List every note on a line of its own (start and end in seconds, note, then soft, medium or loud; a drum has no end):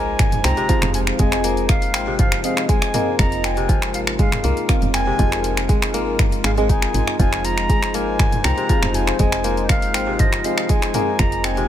0.00 0.37 G#1 loud
0.00 0.62 F3 loud
0.00 1.18 G#3 loud
0.00 11.68 G#3 medium
0.00 1.44 A#3 loud
0.00 0.24 C4 medium
0.00 0.66 C4 medium
0.00 11.68 D#4 medium
0.00 0.66 F4 medium
0.00 11.68 F4 medium
0.00 0.66 G#4 medium
0.00 3.18 C5 medium
0.00 0.66 D#5 medium
0.00 0.46 G#5 loud
0.00 sub drop medium
0.19 finger snap medium
0.19 kick loud
0.19 closed hi-hat medium
0.19 mid tom medium
0.32 closed hi-hat soft
0.32 mid tom medium
0.44 0.52 C2 medium
0.44 1.94 C4 medium
0.44 0.94 A#5 loud
0.44 finger snap medium
0.44 open hi-hat medium
0.57 2.06 C3 medium
0.57 closed hi-hat soft
0.69 2.12 F3 loud
0.69 1.16 C4 loud
0.69 1.16 F4 loud
0.69 1.16 G#4 medium
0.69 1.16 F5 loud
0.69 kick loud
0.69 closed hi-hat medium
0.82 1.12 F1 medium
0.82 finger snap medium
0.82 closed hi-hat soft
0.82 mid tom medium
0.94 1.00 G#5 loud
0.94 open hi-hat medium
1.07 finger snap medium
1.19 1.96 F1 loud
1.19 2.68 G#3 loud
1.19 2.41 C4 loud
1.19 2.41 F4 medium
1.19 2.41 G#4 medium
1.19 2.41 D#5 loud
1.19 1.66 G#5 loud
1.19 kick loud
1.19 closed hi-hat medium
1.32 finger snap medium
1.32 closed hi-hat soft
1.44 2.94 A#3 loud
1.44 open hi-hat loud
1.57 closed hi-hat soft
1.69 2.16 F5 medium
1.69 finger snap medium
1.69 kick loud
1.69 closed hi-hat medium
1.82 open hi-hat medium
1.94 2.37 G#1 loud
1.94 3.44 C4 medium
1.94 finger snap loud
1.94 open hi-hat medium
2.07 3.56 C3 medium
2.19 3.62 F3 loud
2.19 2.42 F5 loud
2.19 kick loud
2.19 closed hi-hat medium
2.19 mid tom medium
2.32 finger snap loud
2.32 closed hi-hat soft
2.44 2.91 C4 medium
2.44 2.91 F4 medium
2.44 2.91 G#4 medium
2.44 2.91 D#5 loud
2.44 2.68 F5 medium
2.44 open hi-hat medium
2.57 finger snap medium
2.57 closed hi-hat soft
2.69 4.18 G#3 loud
2.69 3.16 G#5 loud
2.69 kick loud
2.69 closed hi-hat medium
2.82 finger snap medium
2.82 closed hi-hat soft
2.94 4.43 A#3 loud
2.94 3.10 C4 loud
2.94 3.10 F4 medium
2.94 3.10 G#4 medium
2.94 3.10 D#5 loud
2.94 mid tom medium
2.94 open hi-hat medium
3.19 3.96 F1 loud
3.19 4.66 C4 medium
3.19 4.66 F4 medium
3.19 4.66 G#4 medium
3.19 7.18 A#4 medium
3.19 4.66 D#5 loud
3.19 3.46 A#5 loud
3.19 finger snap medium
3.19 kick loud
3.19 closed hi-hat medium
3.32 closed hi-hat soft
3.44 4.93 C4 medium
3.44 3.94 G#5 loud
3.44 finger snap loud
3.44 open hi-hat medium
3.57 5.06 C3 medium
3.57 closed hi-hat soft
3.69 5.12 F3 loud
3.69 kick loud
3.69 closed hi-hat medium
3.82 finger snap loud
3.82 closed hi-hat soft
3.94 4.37 G#1 loud
3.94 4.00 F5 medium
3.94 open hi-hat medium
4.07 finger snap medium
4.19 5.68 G#3 loud
4.19 4.64 F5 medium
4.19 kick loud
4.19 closed hi-hat medium
4.19 mid tom medium
4.32 finger snap loud
4.32 closed hi-hat soft
4.32 mid tom medium
4.44 4.52 C2 medium
4.44 5.93 A#3 loud
4.44 open hi-hat medium
4.57 closed hi-hat soft
4.69 5.16 C4 loud
4.69 5.16 F4 loud
4.69 5.16 G#4 loud
4.69 5.16 F5 loud
4.69 finger snap medium
4.69 kick loud
4.69 closed hi-hat medium
4.82 5.12 F1 medium
4.82 closed hi-hat soft
4.82 mid tom medium
4.94 6.74 C4 medium
4.94 5.90 G#5 loud
4.94 finger snap medium
4.94 open hi-hat medium
5.07 7.41 C3 medium
5.19 5.95 F1 loud
5.19 7.18 F3 loud
5.19 6.41 C4 loud
5.19 6.41 F4 medium
5.19 6.41 G#4 medium
5.19 6.41 D#5 loud
5.19 kick loud
5.19 closed hi-hat medium
5.32 finger snap medium
5.32 closed hi-hat soft
5.44 open hi-hat medium
5.57 finger snap medium
5.57 closed hi-hat soft
5.69 6.43 G#3 loud
5.69 kick loud
5.69 closed hi-hat medium
5.82 finger snap loud
5.82 open hi-hat medium
5.94 6.37 G#1 loud
5.94 7.87 A#3 loud
5.94 open hi-hat medium
6.19 finger snap medium
6.19 kick loud
6.19 closed hi-hat medium
6.19 mid tom medium
6.32 closed hi-hat soft
6.44 6.87 G#1 medium
6.44 6.57 G#3 medium
6.44 6.51 F5 medium
6.44 finger snap loud
6.44 open hi-hat medium
6.57 7.68 G#3 loud
6.57 7.16 C4 medium
6.57 7.16 F4 medium
6.57 7.16 G#4 medium
6.57 7.16 D#5 medium
6.57 closed hi-hat soft
6.69 8.32 D#4 loud
6.69 7.16 G#5 loud
6.69 kick loud
6.69 closed hi-hat medium
6.82 finger snap medium
6.82 closed hi-hat soft
6.94 7.02 G#1 medium
6.94 mid tom medium
6.94 open hi-hat medium
7.08 finger snap medium
7.19 7.96 F1 loud
7.19 8.62 F3 loud
7.19 8.66 C4 medium
7.19 8.66 F4 medium
7.19 8.66 G#4 medium
7.19 11.18 C5 medium
7.19 8.66 D#5 loud
7.19 7.46 G#5 loud
7.19 kick loud
7.19 closed hi-hat medium
7.33 finger snap medium
7.33 closed hi-hat soft
7.45 7.97 A#5 loud
7.45 open hi-hat medium
7.58 finger snap medium
7.58 closed hi-hat soft
7.69 9.18 G#3 loud
7.69 kick loud
7.69 closed hi-hat medium
7.83 finger snap loud
7.83 closed hi-hat soft
7.94 8.37 G#1 medium
7.94 9.44 A#3 loud
7.94 8.46 G#5 loud
7.94 open hi-hat medium
8.19 finger snap medium
8.19 kick loud
8.19 closed hi-hat medium
8.19 mid tom medium
8.32 closed hi-hat soft
8.32 mid tom loud
8.44 8.53 C2 medium
8.44 9.94 C4 medium
8.44 8.96 A#5 loud
8.44 finger snap medium
8.44 open hi-hat medium
8.58 10.06 C3 medium
8.58 closed hi-hat soft
8.69 10.12 F3 loud
8.69 9.17 C4 loud
8.69 9.17 F4 medium
8.69 9.17 G#4 medium
8.69 9.17 F5 loud
8.69 kick loud
8.69 closed hi-hat medium
8.83 9.12 F1 medium
8.83 finger snap medium
8.83 closed hi-hat soft
8.83 mid tom medium
8.94 9.20 G#5 loud
8.94 open hi-hat medium
9.07 finger snap medium
9.19 9.96 F1 loud
9.19 10.68 G#3 loud
9.19 10.42 C4 loud
9.19 10.42 F4 medium
9.19 10.42 G#4 medium
9.19 10.42 D#5 loud
9.19 9.66 G#5 loud
9.19 kick loud
9.19 closed hi-hat medium
9.32 finger snap medium
9.32 closed hi-hat soft
9.44 10.94 A#3 loud
9.44 open hi-hat medium
9.57 closed hi-hat soft
9.69 10.21 F5 loud
9.69 finger snap medium
9.69 kick loud
9.69 closed hi-hat medium
9.82 open hi-hat medium
9.94 10.37 G#1 loud
9.94 11.44 C4 medium
9.94 finger snap medium
9.94 open hi-hat medium
10.07 11.56 C3 medium
10.19 11.62 F3 loud
10.19 10.47 D#5 loud
10.19 kick loud
10.19 closed hi-hat medium
10.19 mid tom loud
10.33 finger snap medium
10.33 closed hi-hat soft
10.44 10.92 C4 medium
10.44 10.91 F4 medium
10.44 10.92 G#4 medium
10.44 10.91 D#5 loud
10.44 10.71 F5 medium
10.44 open hi-hat medium
10.58 finger snap medium
10.58 closed hi-hat soft
10.69 11.68 G#3 loud
10.69 11.21 G#5 loud
10.69 kick loud
10.69 closed hi-hat medium
10.82 finger snap medium
10.82 closed hi-hat soft
10.94 11.68 A#3 loud
10.94 11.10 C4 loud
10.94 11.10 F4 medium
10.94 11.10 G#4 medium
10.94 11.10 D#5 loud
10.94 mid tom medium
10.94 open hi-hat medium
11.19 11.68 F1 loud
11.19 11.68 C4 medium
11.19 11.68 F4 medium
11.19 11.68 G#4 medium
11.19 11.68 D#5 medium
11.19 11.68 D#5 loud
11.19 11.46 A#5 loud
11.19 finger snap medium
11.19 kick loud
11.19 closed hi-hat medium
11.32 closed hi-hat soft
11.44 11.68 C4 medium
11.44 11.68 G#5 loud
11.44 finger snap medium
11.44 open hi-hat medium
11.57 11.68 C3 medium
11.57 closed hi-hat soft